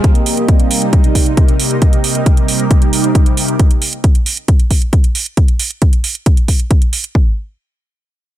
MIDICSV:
0, 0, Header, 1, 3, 480
1, 0, Start_track
1, 0, Tempo, 444444
1, 42, Time_signature, 4, 2, 24, 8
1, 9043, End_track
2, 0, Start_track
2, 0, Title_t, "Analog synth pad"
2, 0, Program_c, 0, 89
2, 44, Note_on_c, 0, 48, 88
2, 44, Note_on_c, 0, 55, 87
2, 44, Note_on_c, 0, 58, 88
2, 44, Note_on_c, 0, 63, 89
2, 211, Note_off_c, 0, 58, 0
2, 212, Note_off_c, 0, 48, 0
2, 212, Note_off_c, 0, 55, 0
2, 212, Note_off_c, 0, 63, 0
2, 285, Note_on_c, 0, 63, 87
2, 286, Note_on_c, 0, 48, 90
2, 286, Note_on_c, 0, 55, 89
2, 286, Note_on_c, 0, 58, 87
2, 452, Note_off_c, 0, 63, 0
2, 453, Note_off_c, 0, 48, 0
2, 453, Note_off_c, 0, 55, 0
2, 453, Note_off_c, 0, 58, 0
2, 524, Note_on_c, 0, 58, 89
2, 525, Note_on_c, 0, 48, 88
2, 525, Note_on_c, 0, 55, 88
2, 525, Note_on_c, 0, 63, 87
2, 608, Note_off_c, 0, 48, 0
2, 608, Note_off_c, 0, 55, 0
2, 608, Note_off_c, 0, 58, 0
2, 608, Note_off_c, 0, 63, 0
2, 646, Note_on_c, 0, 48, 90
2, 646, Note_on_c, 0, 55, 87
2, 646, Note_on_c, 0, 58, 85
2, 646, Note_on_c, 0, 63, 85
2, 729, Note_off_c, 0, 48, 0
2, 729, Note_off_c, 0, 55, 0
2, 729, Note_off_c, 0, 58, 0
2, 729, Note_off_c, 0, 63, 0
2, 766, Note_on_c, 0, 55, 92
2, 766, Note_on_c, 0, 63, 89
2, 767, Note_on_c, 0, 48, 87
2, 767, Note_on_c, 0, 58, 90
2, 933, Note_off_c, 0, 48, 0
2, 933, Note_off_c, 0, 55, 0
2, 933, Note_off_c, 0, 63, 0
2, 934, Note_off_c, 0, 58, 0
2, 1007, Note_on_c, 0, 48, 92
2, 1007, Note_on_c, 0, 58, 95
2, 1007, Note_on_c, 0, 63, 93
2, 1008, Note_on_c, 0, 55, 91
2, 1173, Note_off_c, 0, 48, 0
2, 1173, Note_off_c, 0, 63, 0
2, 1174, Note_off_c, 0, 55, 0
2, 1174, Note_off_c, 0, 58, 0
2, 1246, Note_on_c, 0, 58, 90
2, 1247, Note_on_c, 0, 48, 91
2, 1247, Note_on_c, 0, 55, 88
2, 1247, Note_on_c, 0, 63, 91
2, 1413, Note_off_c, 0, 48, 0
2, 1413, Note_off_c, 0, 55, 0
2, 1413, Note_off_c, 0, 58, 0
2, 1414, Note_off_c, 0, 63, 0
2, 1484, Note_on_c, 0, 55, 87
2, 1484, Note_on_c, 0, 58, 88
2, 1484, Note_on_c, 0, 63, 87
2, 1485, Note_on_c, 0, 48, 89
2, 1652, Note_off_c, 0, 48, 0
2, 1652, Note_off_c, 0, 55, 0
2, 1652, Note_off_c, 0, 58, 0
2, 1652, Note_off_c, 0, 63, 0
2, 1725, Note_on_c, 0, 48, 87
2, 1725, Note_on_c, 0, 58, 88
2, 1725, Note_on_c, 0, 63, 87
2, 1726, Note_on_c, 0, 55, 86
2, 1892, Note_off_c, 0, 48, 0
2, 1892, Note_off_c, 0, 55, 0
2, 1892, Note_off_c, 0, 58, 0
2, 1892, Note_off_c, 0, 63, 0
2, 1964, Note_on_c, 0, 48, 90
2, 1965, Note_on_c, 0, 55, 86
2, 1965, Note_on_c, 0, 58, 90
2, 1965, Note_on_c, 0, 63, 87
2, 2131, Note_off_c, 0, 48, 0
2, 2132, Note_off_c, 0, 55, 0
2, 2132, Note_off_c, 0, 58, 0
2, 2132, Note_off_c, 0, 63, 0
2, 2206, Note_on_c, 0, 55, 88
2, 2206, Note_on_c, 0, 63, 86
2, 2207, Note_on_c, 0, 48, 86
2, 2207, Note_on_c, 0, 58, 89
2, 2373, Note_off_c, 0, 48, 0
2, 2373, Note_off_c, 0, 55, 0
2, 2373, Note_off_c, 0, 58, 0
2, 2373, Note_off_c, 0, 63, 0
2, 2446, Note_on_c, 0, 48, 91
2, 2446, Note_on_c, 0, 55, 87
2, 2446, Note_on_c, 0, 63, 85
2, 2447, Note_on_c, 0, 58, 89
2, 2529, Note_off_c, 0, 48, 0
2, 2529, Note_off_c, 0, 55, 0
2, 2529, Note_off_c, 0, 58, 0
2, 2529, Note_off_c, 0, 63, 0
2, 2566, Note_on_c, 0, 48, 86
2, 2566, Note_on_c, 0, 55, 89
2, 2566, Note_on_c, 0, 58, 90
2, 2566, Note_on_c, 0, 63, 90
2, 2649, Note_off_c, 0, 48, 0
2, 2649, Note_off_c, 0, 55, 0
2, 2649, Note_off_c, 0, 58, 0
2, 2649, Note_off_c, 0, 63, 0
2, 2685, Note_on_c, 0, 48, 86
2, 2685, Note_on_c, 0, 58, 92
2, 2686, Note_on_c, 0, 55, 87
2, 2686, Note_on_c, 0, 63, 90
2, 2852, Note_off_c, 0, 48, 0
2, 2852, Note_off_c, 0, 58, 0
2, 2853, Note_off_c, 0, 55, 0
2, 2853, Note_off_c, 0, 63, 0
2, 2923, Note_on_c, 0, 58, 95
2, 2923, Note_on_c, 0, 63, 94
2, 2924, Note_on_c, 0, 48, 92
2, 2924, Note_on_c, 0, 55, 92
2, 3091, Note_off_c, 0, 58, 0
2, 3091, Note_off_c, 0, 63, 0
2, 3092, Note_off_c, 0, 48, 0
2, 3092, Note_off_c, 0, 55, 0
2, 3165, Note_on_c, 0, 55, 90
2, 3165, Note_on_c, 0, 58, 93
2, 3165, Note_on_c, 0, 63, 90
2, 3166, Note_on_c, 0, 48, 90
2, 3332, Note_off_c, 0, 55, 0
2, 3332, Note_off_c, 0, 58, 0
2, 3332, Note_off_c, 0, 63, 0
2, 3333, Note_off_c, 0, 48, 0
2, 3405, Note_on_c, 0, 48, 89
2, 3405, Note_on_c, 0, 63, 88
2, 3406, Note_on_c, 0, 55, 90
2, 3406, Note_on_c, 0, 58, 87
2, 3572, Note_off_c, 0, 48, 0
2, 3572, Note_off_c, 0, 63, 0
2, 3573, Note_off_c, 0, 55, 0
2, 3573, Note_off_c, 0, 58, 0
2, 3644, Note_on_c, 0, 48, 86
2, 3644, Note_on_c, 0, 55, 85
2, 3644, Note_on_c, 0, 58, 88
2, 3644, Note_on_c, 0, 63, 88
2, 3811, Note_off_c, 0, 48, 0
2, 3811, Note_off_c, 0, 55, 0
2, 3812, Note_off_c, 0, 58, 0
2, 3812, Note_off_c, 0, 63, 0
2, 9043, End_track
3, 0, Start_track
3, 0, Title_t, "Drums"
3, 43, Note_on_c, 9, 42, 72
3, 44, Note_on_c, 9, 36, 115
3, 151, Note_off_c, 9, 42, 0
3, 152, Note_off_c, 9, 36, 0
3, 163, Note_on_c, 9, 42, 48
3, 271, Note_off_c, 9, 42, 0
3, 282, Note_on_c, 9, 46, 105
3, 390, Note_off_c, 9, 46, 0
3, 402, Note_on_c, 9, 42, 48
3, 510, Note_off_c, 9, 42, 0
3, 523, Note_on_c, 9, 42, 71
3, 524, Note_on_c, 9, 36, 114
3, 631, Note_off_c, 9, 42, 0
3, 632, Note_off_c, 9, 36, 0
3, 643, Note_on_c, 9, 42, 48
3, 751, Note_off_c, 9, 42, 0
3, 763, Note_on_c, 9, 46, 101
3, 871, Note_off_c, 9, 46, 0
3, 883, Note_on_c, 9, 42, 47
3, 991, Note_off_c, 9, 42, 0
3, 1003, Note_on_c, 9, 42, 71
3, 1004, Note_on_c, 9, 36, 112
3, 1111, Note_off_c, 9, 42, 0
3, 1112, Note_off_c, 9, 36, 0
3, 1123, Note_on_c, 9, 42, 48
3, 1231, Note_off_c, 9, 42, 0
3, 1244, Note_on_c, 9, 36, 56
3, 1244, Note_on_c, 9, 46, 106
3, 1352, Note_off_c, 9, 36, 0
3, 1352, Note_off_c, 9, 46, 0
3, 1363, Note_on_c, 9, 42, 49
3, 1471, Note_off_c, 9, 42, 0
3, 1483, Note_on_c, 9, 42, 72
3, 1484, Note_on_c, 9, 36, 115
3, 1591, Note_off_c, 9, 42, 0
3, 1592, Note_off_c, 9, 36, 0
3, 1603, Note_on_c, 9, 42, 47
3, 1711, Note_off_c, 9, 42, 0
3, 1723, Note_on_c, 9, 46, 103
3, 1831, Note_off_c, 9, 46, 0
3, 1843, Note_on_c, 9, 42, 47
3, 1951, Note_off_c, 9, 42, 0
3, 1963, Note_on_c, 9, 42, 73
3, 1964, Note_on_c, 9, 36, 106
3, 2071, Note_off_c, 9, 42, 0
3, 2072, Note_off_c, 9, 36, 0
3, 2083, Note_on_c, 9, 42, 52
3, 2191, Note_off_c, 9, 42, 0
3, 2203, Note_on_c, 9, 46, 102
3, 2311, Note_off_c, 9, 46, 0
3, 2323, Note_on_c, 9, 42, 50
3, 2431, Note_off_c, 9, 42, 0
3, 2443, Note_on_c, 9, 36, 107
3, 2443, Note_on_c, 9, 42, 75
3, 2551, Note_off_c, 9, 36, 0
3, 2551, Note_off_c, 9, 42, 0
3, 2563, Note_on_c, 9, 42, 52
3, 2671, Note_off_c, 9, 42, 0
3, 2683, Note_on_c, 9, 46, 94
3, 2791, Note_off_c, 9, 46, 0
3, 2802, Note_on_c, 9, 42, 51
3, 2910, Note_off_c, 9, 42, 0
3, 2923, Note_on_c, 9, 36, 113
3, 2923, Note_on_c, 9, 42, 72
3, 3031, Note_off_c, 9, 36, 0
3, 3031, Note_off_c, 9, 42, 0
3, 3043, Note_on_c, 9, 42, 49
3, 3151, Note_off_c, 9, 42, 0
3, 3163, Note_on_c, 9, 46, 103
3, 3271, Note_off_c, 9, 46, 0
3, 3283, Note_on_c, 9, 42, 49
3, 3391, Note_off_c, 9, 42, 0
3, 3403, Note_on_c, 9, 36, 112
3, 3403, Note_on_c, 9, 42, 74
3, 3511, Note_off_c, 9, 36, 0
3, 3511, Note_off_c, 9, 42, 0
3, 3522, Note_on_c, 9, 42, 50
3, 3630, Note_off_c, 9, 42, 0
3, 3642, Note_on_c, 9, 46, 98
3, 3750, Note_off_c, 9, 46, 0
3, 3763, Note_on_c, 9, 42, 48
3, 3871, Note_off_c, 9, 42, 0
3, 3882, Note_on_c, 9, 42, 80
3, 3883, Note_on_c, 9, 36, 104
3, 3990, Note_off_c, 9, 42, 0
3, 3991, Note_off_c, 9, 36, 0
3, 4003, Note_on_c, 9, 42, 54
3, 4111, Note_off_c, 9, 42, 0
3, 4122, Note_on_c, 9, 46, 99
3, 4230, Note_off_c, 9, 46, 0
3, 4242, Note_on_c, 9, 42, 52
3, 4350, Note_off_c, 9, 42, 0
3, 4362, Note_on_c, 9, 42, 74
3, 4363, Note_on_c, 9, 36, 106
3, 4470, Note_off_c, 9, 42, 0
3, 4471, Note_off_c, 9, 36, 0
3, 4482, Note_on_c, 9, 42, 52
3, 4590, Note_off_c, 9, 42, 0
3, 4602, Note_on_c, 9, 46, 97
3, 4710, Note_off_c, 9, 46, 0
3, 4722, Note_on_c, 9, 42, 50
3, 4830, Note_off_c, 9, 42, 0
3, 4842, Note_on_c, 9, 42, 76
3, 4843, Note_on_c, 9, 36, 108
3, 4950, Note_off_c, 9, 42, 0
3, 4951, Note_off_c, 9, 36, 0
3, 4963, Note_on_c, 9, 42, 50
3, 5071, Note_off_c, 9, 42, 0
3, 5082, Note_on_c, 9, 46, 98
3, 5083, Note_on_c, 9, 36, 54
3, 5190, Note_off_c, 9, 46, 0
3, 5191, Note_off_c, 9, 36, 0
3, 5203, Note_on_c, 9, 42, 49
3, 5311, Note_off_c, 9, 42, 0
3, 5323, Note_on_c, 9, 36, 109
3, 5323, Note_on_c, 9, 42, 76
3, 5431, Note_off_c, 9, 36, 0
3, 5431, Note_off_c, 9, 42, 0
3, 5443, Note_on_c, 9, 42, 50
3, 5551, Note_off_c, 9, 42, 0
3, 5563, Note_on_c, 9, 46, 98
3, 5671, Note_off_c, 9, 46, 0
3, 5683, Note_on_c, 9, 42, 50
3, 5791, Note_off_c, 9, 42, 0
3, 5802, Note_on_c, 9, 42, 80
3, 5803, Note_on_c, 9, 36, 103
3, 5910, Note_off_c, 9, 42, 0
3, 5911, Note_off_c, 9, 36, 0
3, 5922, Note_on_c, 9, 42, 54
3, 6030, Note_off_c, 9, 42, 0
3, 6042, Note_on_c, 9, 46, 102
3, 6150, Note_off_c, 9, 46, 0
3, 6162, Note_on_c, 9, 42, 51
3, 6270, Note_off_c, 9, 42, 0
3, 6282, Note_on_c, 9, 42, 77
3, 6283, Note_on_c, 9, 36, 101
3, 6390, Note_off_c, 9, 42, 0
3, 6391, Note_off_c, 9, 36, 0
3, 6402, Note_on_c, 9, 42, 53
3, 6510, Note_off_c, 9, 42, 0
3, 6522, Note_on_c, 9, 46, 95
3, 6630, Note_off_c, 9, 46, 0
3, 6642, Note_on_c, 9, 42, 50
3, 6750, Note_off_c, 9, 42, 0
3, 6762, Note_on_c, 9, 42, 78
3, 6763, Note_on_c, 9, 36, 109
3, 6870, Note_off_c, 9, 42, 0
3, 6871, Note_off_c, 9, 36, 0
3, 6883, Note_on_c, 9, 42, 51
3, 6991, Note_off_c, 9, 42, 0
3, 7003, Note_on_c, 9, 36, 51
3, 7003, Note_on_c, 9, 46, 98
3, 7111, Note_off_c, 9, 36, 0
3, 7111, Note_off_c, 9, 46, 0
3, 7123, Note_on_c, 9, 42, 51
3, 7231, Note_off_c, 9, 42, 0
3, 7242, Note_on_c, 9, 42, 76
3, 7243, Note_on_c, 9, 36, 108
3, 7350, Note_off_c, 9, 42, 0
3, 7351, Note_off_c, 9, 36, 0
3, 7363, Note_on_c, 9, 42, 53
3, 7471, Note_off_c, 9, 42, 0
3, 7483, Note_on_c, 9, 46, 101
3, 7591, Note_off_c, 9, 46, 0
3, 7603, Note_on_c, 9, 42, 52
3, 7711, Note_off_c, 9, 42, 0
3, 7723, Note_on_c, 9, 36, 96
3, 7831, Note_off_c, 9, 36, 0
3, 9043, End_track
0, 0, End_of_file